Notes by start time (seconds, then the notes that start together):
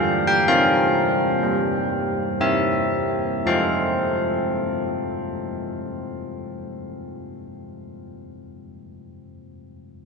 Already playing: D4 A4 F5
0.27 G5
0.48 C4 A#4 F5
1.43 G3
2.40 C4 A#4 E5
3.46 F3 C4 A4 C5 F5